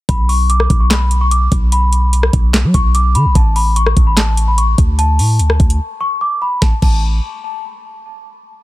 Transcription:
0.09 B1 B5, kick, closed hi-hat
0.29 C#6, open hi-hat
0.50 D6, closed hi-hat
0.60 cross-stick
0.70 B1, kick, closed hi-hat
0.80 C#6
0.90 B5, snare, clap, closed hi-hat
1.11 closed hi-hat
1.21 C#6
1.31 D6, closed hi-hat
1.52 B1, kick, closed hi-hat
1.72 B5, closed hi-hat
1.93 closed hi-hat
2.13 closed hi-hat
2.23 cross-stick
2.33 B1, kick, closed hi-hat
2.54 snare, clap, closed hi-hat
2.64 F#3
2.74 B1 C#6, kick, closed hi-hat
2.95 D6, closed hi-hat
3.15 D3 B5, closed hi-hat
3.25 B1
3.35 A1 A5, kick, closed hi-hat
3.56 B5, open hi-hat
3.76 C#6, closed hi-hat
3.86 cross-stick
3.97 A1, kick, closed hi-hat
4.07 B5
4.17 A5, snare, clap, closed hi-hat
4.37 closed hi-hat
4.48 B5
4.58 C#6, closed hi-hat
4.78 D2, kick, closed hi-hat
4.99 A5, closed hi-hat
5.19 A2, open hi-hat
5.39 D2, closed hi-hat
5.50 cross-stick
5.60 D2, kick, closed hi-hat
5.70 closed hi-hat
6.01 C#6
6.21 D6
6.42 B5
6.62 A1 A5, kick, snare
6.82 A1 A5, kick, crash

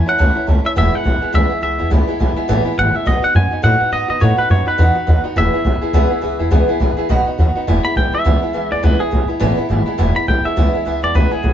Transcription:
0.06 A3 C#4 E4 C#5 E5 F#5 A5
0.18 C#2 A2 E3 A3 C#4 E4 C#5 E5 A5
0.35 A3 C#4 E4 C#5 E5 A5, muted upright bass stroke
0.47 C#2 E3 A3 C#4 E4 C#5 E5 A5
0.64 A3 C#4 E4 C#5 E5 A5, muted upright bass stroke
0.76 E1 E2 B2 E3 G#3 B3 E4 B4 E5 G#5
0.92 E3 G#3 B3 E4 B4 E5 F#5 G#5, muted upright bass stroke
1.04 B1 E3 G#3 B3 E4 E5 G#5
1.21 E3 G#3 B3 E4 B4 E5 G#5, muted upright bass stroke
1.33 C#2 E2 B2 E3 G#3 B3 E4 B4 E5 G#5
1.49 E3 G#3 B3 E4 B4 E5 G#5, muted upright bass stroke
1.61 C#2 E3 G#3 B3 E4 B4 E5 G#5
1.78 E2 E3 G#3 B3 E4 B4 E5 G#5
1.90 C#2 E2 B2 E3 G#3 B3 E4 B4 E5 G#5
2.07 E3 G#3 B3 E4 B4 E5 G#5
2.19 B1 E3 G#3 B3 E4 B4 E5 G#5
2.36 E3 G#3 B3 E4 B4 E5 G#5, muted upright bass stroke
2.48 A1 E2 B2 E3 G#3 B3 E4 B4 E5 G#5
2.65 E3 G#3 B3 E4 B4 E5 G#5, muted upright bass stroke
2.77 G#1 E3 G#3 B3 E4 B4 E5 F#5
2.94 E3 G#3 B3 E4 B4 E5 G#5, muted upright bass stroke
3.05 B1 B2 F#3 B3 D#4 F#4 B4 D#5 F#5
3.22 B3 D#4 F#4 B4 D#5 F#5, muted upright bass stroke
3.34 F#2 F#3 B3 D#4 F#4 B4 D#5 F#5 G#5
3.51 B3 D#4 F#4 B4 D#5 F#5, muted upright bass stroke
3.62 A2 B2 F#3 B3 D#4 F#4 B4 D#5 F#5
3.80 B3 D#4 F#4 B4 D#5 F#5, muted upright bass stroke
3.92 G#2 F#3 B3 D#4 F#4 B4 D#5 F#5
4.08 B2 B3 D#4 F#4 B4 D#5 F#5
4.20 A2 B2 F#3 B3 D#4 F#4 B4 C#5 D#5 F#5
4.37 B3 D#4 F#4 B4 D#5 F#5, muted upright bass stroke
4.49 F#2 F#3 B3 D#4 F#4 B4 C#5 D#5 F#5
4.66 B3 D#4 F#4 B4 D#5 F#5, muted upright bass stroke
4.78 E2 B2 F#3 B3 D#4 F#4 B4 D#5 F#5
4.95 B3 D#4 F#4 D#5 F#5, muted upright bass stroke
5.06 D#2 F#3 B3 D#4 F#4 B4 D#5 F#5
5.23 B3 D#4 F#4 B4 D#5 F#5, muted upright bass stroke
5.36 E1 E2 B2 E3 B3 E4 G#4 B4 E5 G#5
5.53 E3 B3 E4 G#4 B4 E5 G#5, muted upright bass stroke
5.64 B1 E3 B3 E4 G#4 B4 E5 G#5
5.81 E3 B3 E4 G#4 B4 E5 G#5, muted upright bass stroke
5.93 C#2 E2 B2 E3 B3 E4 G#4 B4 E5 G#5
6.10 E3 B3 E4 G#4 B4 E5 G#5, muted upright bass stroke
6.21 C#2 E3 B3 E4 G#4 B4 E5 G#5
6.39 E2 E3 B3 E4 G#4 B4 E5 G#5
6.51 C#2 E2 B2 E3 B3 E4 G#4 B4 E5 G#5
6.68 E3 B3 E4 G#4 B4 E5 G#5
6.80 B1 E3 B3 E4 G#4 B4 E5 G#5
6.97 E3 B3 E4 G#4 B4 E5 G#5, muted upright bass stroke
7.09 B1 B2 F#3 B3 D#4 F#4 B4 D#5 F#5
7.26 B3 D#4 F#4 B4 D#5 F#5, muted upright bass stroke
7.38 D#2 F#3 B3 D#4 F#4 B4 D#5 F#5
7.55 B3 D#4 F#4 B4 D#5 F#5, muted upright bass stroke
7.67 E1 E2 B2 E3 G#3 B3 E4 B4 E5 G#5
7.84 E3 G#3 B3 E4 B4 E5 G#5 B5
7.95 B1 E3 G#3 B3 E4 B4 E5 G5 G#5
8.13 E3 G#3 B3 E4 B4 E5 G#5, muted upright bass stroke
8.24 C#2 E2 B2 E3 G#3 B3 E4 B4 E5 G#5
8.42 E3 G#3 B3 E4 B4 E5 G#5, muted upright bass stroke
8.53 C#2 E3 G#3 B3 E4 B4 E5 G#5
8.71 E2 E3 G#3 B3 E4 B4 D5 G#5
8.83 C#2 E2 B2 E3 G#3 B3 E4 B4 E5 G#5
8.99 E3 G#3 B3 E4 G#4 B4 E5 G#5, muted upright bass stroke
9.11 B1 E3 G#3 B3 E4 B4 E5 G#5
9.28 E3 G#3 B3 E4 B4 E5 G#5, muted upright bass stroke
9.40 A1 E2 B2 E3 G#3 B3 E4 B4 E5 G#5
9.57 E3 G#3 B3 E4 B4 E5 G#5, muted upright bass stroke
9.69 G#1 E3 G#3 B3 E4 B4 E5 G#5
9.86 E3 G#3 B3 E4 B4 E5 G#5, muted upright bass stroke
9.98 E1 E2 B2 E3 G#3 B3 E4 B4 E5 G#5
10.15 E3 G#3 B3 E4 B4 E5 G#5 B5, muted upright bass stroke
10.27 B1 E3 G#3 B3 E4 B4 E5 G5 G#5
10.44 E3 G#3 B3 E4 B4 E5 G#5, muted upright bass stroke
10.56 C#2 E2 B2 E3 G#3 B3 E4 B4 E5 G#5
10.73 E3 G#3 B3 E4 B4 E5 G#5, muted upright bass stroke
10.85 C#2 E3 G#3 B3 E4 B4 E5 G#5
11.02 E2 E3 G#3 B3 E4 B4 D5 G#5
11.14 C#2 E2 B2 E3 G#3 B3 E4 B4 E5 G#5
11.31 E3 G#3 B3 E4 G#4 B4 E5 G#5, muted upright bass stroke
11.43 B1 E3 G#3 B3 E4 B4

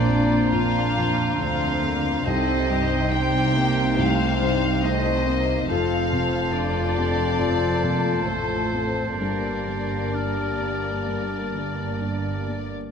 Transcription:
Already playing: A#1 F2 A#2 C4 D4 F4 C5 D5 A#5
0.08 C4
0.52 A#1 D4 F5
0.96 F2
1.39 D2 D3 C4 D4 F5
1.83 A#3 C4
2.25 C2 C3 C4 D#4 A4 C5 D#5 G5
2.70 G2 G4
3.10 C4 D#4 G4 G5
3.55 A#3 C4
3.97 C2 A3 C5
4.01 F5
4.41 G2 G3
4.82 A3 D#4 C5 D#5
5.27 A#3 C4
5.68 F1 F2 C4 F4 A4 C5 F5 A5
5.73 F4
6.11 C3 A4
6.54 D4 F4 D5
6.97 C4 G4
7.39 F2 C4 A4
7.83 C3 A#3
8.28 A1 A2 A3 F4 C5
8.73 C4
9.18 G1 G2 A#3 D4 G4 A#4 D5 A5
9.66 D3
10.14 D4 A#4
10.60 A#3
11.07 G2
11.54 D3
12.01 D4
12.48 A#3

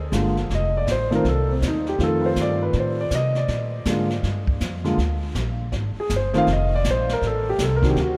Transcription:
Already playing: D2
0.12 G1 D3 G#3 A#3 F4, kick, snare, hi-hat pedal
0.37 snare
0.49 F1, brush sweep, kick, snare
0.55 D#5
0.77 D5
0.87 A1, kick, snare, hi-hat pedal
0.92 C5
1.11 D#3 A3 C4 F4, snare
1.15 A#4
1.24 C2, brush sweep, kick, snare
1.28 A4
1.51 C4
1.62 D#2, kick, snare, hi-hat pedal
1.67 D#4
1.86 G4, snare
1.98 F2 D#3 A3 C4 F4, brush sweep, kick, snare
2.03 A4
2.22 B4
2.26 C5
2.36 G2, kick, snare, hi-hat pedal
2.41 D5
2.63 B4
2.73 A2, brush sweep, kick, snare
2.80 C5
3.01 D5
3.11 C3, kick, snare, hi-hat pedal
3.15 D#5
3.35 D5, snare
3.48 A#2, brush sweep, kick, snare
3.85 G#2 D3 G#3 A#3 F4, kick, snare, hi-hat pedal
4.10 snare
4.23 G2, brush sweep, kick, snare
4.47 kick
4.61 F2, kick, snare, hi-hat pedal
4.84 D3 G#3 A#3 F4, snare
4.98 D2, brush sweep, kick, snare
5.35 A#1, kick, snare, hi-hat pedal
5.72 G#1, brush sweep, kick, snare
5.96 muted upright bass stroke
6.00 G#4
6.10 G1, kick, snare, hi-hat pedal
6.16 C5
6.33 D#3 A3 C4 F4, snare
6.38 F5
6.47 F1, brush sweep, kick, snare
6.53 D#5
6.75 D5
6.84 A#1, kick, snare, hi-hat pedal
6.91 C5
7.09 A#4, snare
7.21 A1, brush sweep, kick, snare
7.27 A4
7.49 G4
7.58 C2 A4, kick, snare, hi-hat pedal
7.76 A#4
7.81 D#3 C4 D4 F#4, kick, snare
7.89 G4
7.96 D2, brush sweep, kick, snare
8.01 F#4

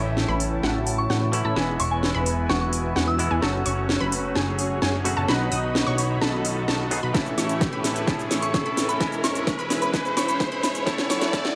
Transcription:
Already playing: A1 A2 E3 A3 C#4 E4 C#5 A5 C#6, riser
0.17 snare
0.28 A1 C#4 E4 B4 B5
0.40 open hi-hat
0.63 A1 C#4 E4 F#4 F#5, snare
0.87 open hi-hat
0.98 C#6
1.10 A2 C#4 E4 F#4 F#5, snare
1.32 E3 A3 C#4 E4, open hi-hat
1.45 A2 C#4 E4 A4 A5 B5
1.55 E1 E3 G#3 B3 E4 G#4 B4 G#5, snare
1.80 E1 B3 E4 C#5 C#6, open hi-hat
1.91 G#5
2.03 snare
2.14 E1 B3 E4 B4 B5
2.26 open hi-hat
2.49 E1 B3 E4 F#4 F#5 C#6, snare
2.61 C#6
2.73 open hi-hat
2.96 E2 B3 E4 F#4 F#5, snare
3.08 E6
3.19 E3 G#3 B3 E4, open hi-hat
3.31 E2 B3 E4 G#4 G#5
3.41 F#1 F#3 A3 C#4 F#4 A4 C#5 A5, snare
3.66 F#1 C#4 F#4 C#5 C#6, open hi-hat
3.89 snare
4.00 F#1 C#4 F#4 B4 B5
4.12 open hi-hat
4.35 F#1 C#4 F#4 G#4 G#5, snare
4.59 open hi-hat
4.82 F#1 C#4 F#4 G#4 G#5, snare
5.04 B2 F#3 A3 C#4 F#4, open hi-hat
5.17 F#1 C#4 F#4 A4 A5
5.27 B1 B2 F#3 B3 D#4 F#4 B4 D#5 B5, snare
5.52 B1 D#4 F#4 D#5 D#6, open hi-hat
5.75 snare
5.87 B1 D#4 F#4 C#5 C#6
5.98 open hi-hat
6.21 B1 D#4 F#4 A4 A5, snare
6.45 open hi-hat
6.68 B1 D#4 F#4 A4 A5, snare
6.91 F#3 B3 D#4 G#4, open hi-hat
7.03 B1 D#4 F#4 B4 B5
7.13 A2 E3 A3 C#4 E4 A4 E5 A5 C#6, kick, snare, closed hi-hat, cabasa
7.26 closed hi-hat, cabasa
7.38 A1 C#4 E4 C#5 C#6, snare, open hi-hat, cabasa
7.49 closed hi-hat, cabasa
7.61 kick, snare, closed hi-hat, cabasa
7.73 A1 C#4 E4 B4 B5, closed hi-hat
7.84 snare, open hi-hat, cabasa
7.96 closed hi-hat, cabasa
8.06 A1 A2 E3 A3 C#4 E4 A4 A5, kick, snare, closed hi-hat, cabasa
8.19 closed hi-hat, cabasa
8.31 A1 C#4 E4 C#5 C#6, snare, open hi-hat, cabasa
8.42 C#6, closed hi-hat, cabasa
8.54 kick, snare, closed hi-hat, cabasa
8.66 A1 C#4 E4 B4 B5, closed hi-hat
8.77 snare, open hi-hat, cabasa
8.89 B5, closed hi-hat, cabasa
8.99 E1 G#2 E3 G#3 C#4 E4 G#4 G#5 B5, kick, snare, closed hi-hat, cabasa
9.12 closed hi-hat, cabasa
9.24 E1 C#4 E4 C#5 C#6, snare, open hi-hat, cabasa
9.35 closed hi-hat, cabasa
9.47 kick, snare, closed hi-hat, cabasa
9.59 E1 C#4 E4 B4 B5, closed hi-hat, cabasa
9.70 snare, open hi-hat, cabasa
9.82 B5, closed hi-hat, cabasa
9.92 E1 G#2 E3 G#3 C#4 E4 G#4 G#5, kick, snare, closed hi-hat, cabasa
10.05 closed hi-hat, cabasa
10.17 E1 C#4 E4 C#5 B5 C#6, snare, open hi-hat, cabasa
10.28 B5, closed hi-hat, cabasa
10.40 kick, snare, closed hi-hat, cabasa
10.52 E1 C#4 E4 B4 B5, closed hi-hat
10.63 B5, snare, open hi-hat, cabasa
10.75 closed hi-hat, cabasa
10.85 A2 E3 A3 C#4 E4 A4 F#5 A5 C#6, kick, snare, closed hi-hat, cabasa
10.98 snare, closed hi-hat, cabasa
11.10 F#1 C#4 E4 C#5 C#6, snare, open hi-hat, cabasa
11.22 snare, closed hi-hat, cabasa
11.32 A2 E3 A3 C#4 E4 A4 A5, kick, snare, closed hi-hat, cabasa
11.45 snare, closed hi-hat

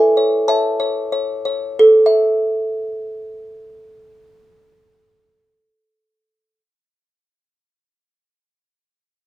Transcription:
Already playing: A4 E5 G#5
0.17 C#5
0.48 C#5 E5 A5
0.80 C#5
1.12 C#5
1.45 C#5
1.79 A4
2.06 E5

